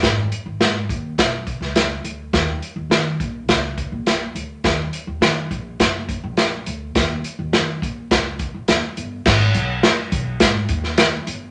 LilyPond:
<<
  \new Staff \with { instrumentName = "Upright bass" } { \clef bass \time 4/4 \key gis \minor \tempo 4 = 104 gis,,8 r16 gis,,16 gis,8 dis,8 b,,8. cis,8. d,8 | dis,8 r16 dis,16 dis8 ais,,8 cis,8. ais,,8. d,8 | dis,8 r16 dis,16 dis8 ais,,8 fis,,8. ais,,8. d,8 | dis,8 r16 dis,16 dis8 ais,,8 cis,8. ais,,16 dis,16 r16 g,,8 |
gis,,8 b,,8 r8 b,,8 gis,8 dis,4 g,,8 | }
  \new DrumStaff \with { instrumentName = "Drums" } \drummode { \time 4/4 <hh bd sn>8 hh8 <hh sn>8 <hh bd>8 <hh bd sn>8 <hh bd>16 sn16 <hh sn>8 hh8 | <hh bd sn>8 hh8 <hh sn>8 <hh bd>8 <hh bd sn>8 <hh bd>8 <hh sn>8 hh8 | <hh bd sn>8 hh8 <hh sn>8 <hh bd>8 <hh bd sn>8 <hh bd>8 <hh sn>8 hh8 | <hh bd sn>8 hh8 <hh sn>8 <hh bd>8 <hh bd sn>8 <hh bd>8 <hh sn>8 hh8 |
<cymc bd sn>8 hh8 <hh sn>8 <hh bd>8 <hh bd sn>8 <hh bd>16 sn16 <hh sn>8 hh8 | }
>>